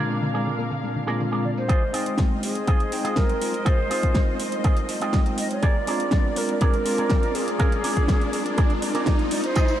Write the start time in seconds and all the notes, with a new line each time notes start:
Already playing: A#2 G#3 C4 D4 G#4 A#4 D5 F5
0.00 D4 F4
0.10 A#3, tambourine
0.22 D3, tambourine
0.34 G#3 G#4 A#4 D5, tambourine
0.47 D3
0.59 A#3, tambourine
0.70 D3, muted clean electric guitar stroke, tambourine
0.84 G#3, tambourine
0.96 D3
1.07 A#2 G#3 A#3 C4 D4 F4 G#4 A#4 D5, tambourine
1.20 D3, tambourine
1.32 G#3 G#4 A#4 D5, tambourine
1.45 D3 D5
1.57 A#3 C5, muted clean electric guitar stroke, tambourine
1.68 G#3 F4 G#4 C5 D#5, kick, closed hi-hat, riser
1.93 G#3 C4 D#4 F4 G#4 D#5 G5, open hi-hat
2.06 closed hi-hat
2.18 kick, snare, closed hi-hat
2.43 G#4, muted clean electric guitar stroke, open hi-hat
2.55 closed hi-hat
2.67 F4 G#4 D#5, kick, closed hi-hat
2.80 closed hi-hat
2.92 G#3 C4 D#4 G5, muted clean electric guitar stroke, open hi-hat
3.04 F4 G#4 D#5, closed hi-hat
3.16 A#4, kick, snare, closed hi-hat
3.29 closed hi-hat
3.41 G#3 C4 D#4 F4, muted clean electric guitar stroke, open hi-hat
3.54 closed hi-hat
3.65 F4 G#4 C5 D#5, kick, closed hi-hat
3.90 G#3 C4 D#4 F4 G#4 D#5, open hi-hat
4.03 kick, closed hi-hat
4.15 kick, snare, closed hi-hat
4.40 muted clean electric guitar stroke, open hi-hat
4.52 closed hi-hat
4.64 F4 G#4 D#5, kick, closed hi-hat
4.77 closed hi-hat
4.89 muted clean electric guitar stroke, open hi-hat
5.00 G#3 C4 D#4 F4 G#4 D#5 G5, closed hi-hat
5.13 kick, snare, closed hi-hat
5.26 closed hi-hat
5.38 D#5, muted clean electric guitar stroke, open hi-hat
5.51 D5, closed hi-hat
5.62 G#3 G#4 A#4 D5, kick, closed hi-hat
5.86 G#3 C4 D4 F4 G#4 A#4 D5, open hi-hat
6.00 closed hi-hat
6.11 kick, snare, closed hi-hat
6.36 A#4, muted clean electric guitar stroke, open hi-hat
6.49 closed hi-hat
6.61 G#4 A#4 D5, kick, closed hi-hat
6.74 closed hi-hat
6.85 G#3 C4 D4 F4, muted clean electric guitar stroke, open hi-hat
6.98 G#4 A#4 D5, closed hi-hat
7.10 kick, snare, closed hi-hat
7.23 closed hi-hat
7.34 G#3 C4 D4 F4 G#4, muted clean electric guitar stroke, open hi-hat
7.48 closed hi-hat
7.59 G#4 A#4 F5, kick, closed hi-hat
7.72 closed hi-hat
7.83 G#3 C4 D4 F4 G#4 A#4 D5, open hi-hat
7.97 kick, closed hi-hat
8.08 kick, snare, closed hi-hat
8.21 closed hi-hat
8.33 muted clean electric guitar stroke, open hi-hat
8.46 closed hi-hat
8.57 G#4 A#4 D5, kick, closed hi-hat
8.70 closed hi-hat
8.82 muted clean electric guitar stroke, open hi-hat
8.94 G#3 C4 D4 F4 G#4 A#4 D5, closed hi-hat
9.06 kick, snare, closed hi-hat
9.19 closed hi-hat
9.31 D5, muted clean electric guitar stroke, open hi-hat
9.44 C5, closed hi-hat
9.56 F4 G#4 C5 D#5, kick, closed hi-hat, tambourine
9.68 tambourine